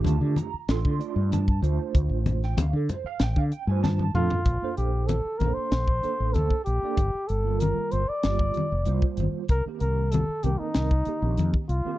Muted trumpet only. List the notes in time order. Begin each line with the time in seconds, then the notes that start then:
4.14 F4
4.77 G4
5.07 A4
5.38 A#4
5.54 C5
6.33 A4
6.64 G4
7.27 A4
7.60 A#4
7.92 C5
8.08 D5
9.50 A#4
9.80 A#4
10.11 A4
10.44 G4
10.59 D#4
11.69 F4